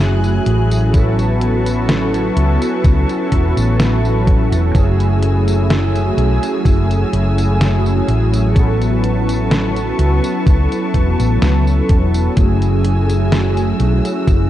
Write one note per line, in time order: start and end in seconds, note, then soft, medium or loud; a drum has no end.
0.00 0.38 F#1 medium
0.00 0.88 F#3 medium
0.00 0.89 A3 medium
0.00 0.91 A3 medium
0.00 0.89 C#4 medium
0.00 0.89 E4 medium
0.00 12.33 F#4 medium
0.00 0.90 G#4 medium
0.00 0.90 G#5 medium
0.00 0.92 F#6 medium
0.24 tambourine soft
0.46 2.29 A1 medium
0.46 closed hi-hat medium
0.71 closed hi-hat medium
0.71 tambourine medium
0.92 2.31 F#3 medium
0.92 2.31 B3 medium
0.92 2.31 C#4 medium
0.92 2.32 E4 medium
0.92 2.32 A4 medium
0.92 4.72 B4 medium
0.92 4.71 A5 medium
0.92 4.72 C#6 medium
0.92 kick loud
0.92 closed hi-hat medium
0.92 tambourine soft
1.19 closed hi-hat soft
1.19 tambourine soft
1.41 closed hi-hat medium
1.66 closed hi-hat medium
1.66 tambourine medium
1.89 snare loud
1.89 closed hi-hat medium
1.89 tambourine soft
2.14 closed hi-hat soft
2.14 tambourine soft
2.35 2.56 C#2 medium
2.35 4.69 F#3 medium
2.35 4.69 B3 medium
2.35 4.70 C#4 medium
2.35 4.70 E4 medium
2.35 4.70 A4 medium
2.35 closed hi-hat medium
2.62 closed hi-hat medium
2.62 tambourine medium
2.84 3.04 C#2 medium
2.84 kick loud
2.84 closed hi-hat medium
2.84 tambourine soft
3.09 closed hi-hat soft
3.09 tambourine soft
3.32 3.51 E1 loud
3.32 kick medium
3.32 closed hi-hat medium
3.57 4.53 A1 medium
3.57 closed hi-hat medium
3.57 tambourine medium
3.80 snare loud
3.80 closed hi-hat medium
3.80 tambourine soft
4.05 tambourine soft
4.27 kick loud
4.27 closed hi-hat medium
4.52 4.70 E1 medium
4.52 closed hi-hat medium
4.52 tambourine medium
4.73 6.10 F#1 loud
4.73 6.12 F#3 medium
4.73 6.12 A3 medium
4.73 8.52 A3 medium
4.73 6.12 C#4 medium
4.73 6.13 E4 medium
4.73 6.13 G#4 medium
4.73 8.52 G#5 medium
4.73 8.52 E6 medium
4.73 kick loud
4.73 closed hi-hat medium
4.73 tambourine soft
5.00 closed hi-hat soft
5.00 tambourine soft
5.23 closed hi-hat medium
5.48 closed hi-hat medium
5.48 tambourine medium
5.70 snare loud
5.70 closed hi-hat medium
5.70 tambourine soft
5.96 closed hi-hat soft
5.96 tambourine soft
6.16 6.37 B1 medium
6.16 8.50 F#3 medium
6.16 8.50 A3 medium
6.16 8.51 C#4 medium
6.16 8.51 E4 medium
6.16 8.51 G#4 medium
6.16 closed hi-hat medium
6.43 closed hi-hat medium
6.43 tambourine medium
6.65 7.03 F#1 medium
6.65 kick loud
6.65 closed hi-hat medium
6.65 tambourine soft
6.91 closed hi-hat soft
6.91 tambourine soft
7.13 8.00 F#1 loud
7.13 closed hi-hat medium
7.38 closed hi-hat medium
7.38 tambourine medium
7.61 snare loud
7.61 closed hi-hat medium
7.61 tambourine soft
7.86 tambourine soft
8.08 9.91 A1 medium
8.08 closed hi-hat medium
8.34 closed hi-hat medium
8.34 tambourine medium
8.55 9.93 F#3 medium
8.55 9.93 B3 medium
8.55 9.93 C#4 medium
8.55 9.94 E4 medium
8.55 9.94 A4 medium
8.55 12.33 B4 medium
8.55 12.33 A5 medium
8.55 12.33 C#6 medium
8.55 kick loud
8.55 closed hi-hat medium
8.55 tambourine soft
8.82 closed hi-hat soft
8.82 tambourine soft
9.04 closed hi-hat medium
9.29 closed hi-hat medium
9.29 tambourine medium
9.51 snare loud
9.51 closed hi-hat medium
9.51 tambourine soft
9.77 closed hi-hat soft
9.77 tambourine soft
9.97 10.18 C#2 medium
9.97 12.31 F#3 medium
9.97 12.31 B3 medium
9.97 12.31 C#4 medium
9.97 12.32 E4 medium
9.97 12.32 A4 medium
9.97 closed hi-hat medium
10.24 closed hi-hat medium
10.24 tambourine medium
10.46 10.66 C#2 medium
10.46 kick loud
10.46 closed hi-hat medium
10.46 tambourine soft
10.72 closed hi-hat soft
10.72 tambourine soft
10.94 11.13 E1 medium
10.94 kick medium
10.94 closed hi-hat medium
11.19 11.41 A1 medium
11.19 closed hi-hat medium
11.19 tambourine medium
11.42 11.79 C#2 medium
11.42 snare loud
11.42 closed hi-hat medium
11.42 tambourine soft
11.67 tambourine soft
11.89 12.27 E1 medium
11.89 kick loud
11.89 closed hi-hat medium
12.14 closed hi-hat medium
12.14 tambourine medium
12.36 13.72 F#1 loud
12.36 13.74 F#3 medium
12.36 13.74 A3 medium
12.36 14.50 A3 medium
12.36 13.75 C#4 medium
12.36 13.75 E4 medium
12.36 14.50 F#4 medium
12.36 13.75 G#4 medium
12.36 14.26 G#5 medium
12.36 14.50 E6 medium
12.36 kick loud
12.36 closed hi-hat medium
12.36 tambourine soft
12.62 closed hi-hat soft
12.62 tambourine soft
12.84 closed hi-hat medium
13.09 closed hi-hat medium
13.09 tambourine medium
13.32 snare loud
13.32 closed hi-hat medium
13.32 tambourine soft
13.57 closed hi-hat soft
13.57 tambourine soft
13.78 13.99 B1 medium
13.78 14.50 F#3 medium
13.78 14.50 A3 medium
13.78 14.50 C#4 medium
13.78 14.50 E4 medium
13.78 14.50 G#4 medium
13.78 closed hi-hat medium
14.05 closed hi-hat medium
14.05 tambourine medium
14.27 14.50 F#1 medium
14.27 kick loud
14.27 closed hi-hat medium
14.27 tambourine soft